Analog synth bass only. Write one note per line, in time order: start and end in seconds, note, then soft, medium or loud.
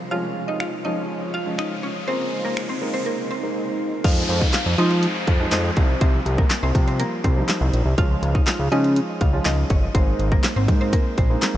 4.04 4.23 F2 loud
4.29 4.48 F2 loud
4.66 4.75 F2 medium
4.78 5.07 F3 loud
5.28 5.46 F2 loud
5.52 5.71 F2 medium
5.77 5.96 C2 loud
6.01 6.20 C2 loud
6.26 6.45 C2 loud
6.63 6.72 C2 loud
6.75 7.03 C3 loud
7.24 7.43 C2 medium
7.61 7.71 C2 loud
7.73 7.83 A#1 loud
7.86 7.95 C2 loud
7.98 8.17 C#2 loud
8.23 8.41 C#2 loud
8.59 8.69 C#2 loud
8.72 9.00 C#3 loud
9.21 9.40 C#2 medium
9.46 9.64 C#2 loud
9.70 9.89 G1 loud
9.95 10.14 G#1 loud
10.19 10.38 G#1 loud
10.56 10.70 G#1 loud
10.68 10.97 G#2 loud
11.18 11.37 A#1 loud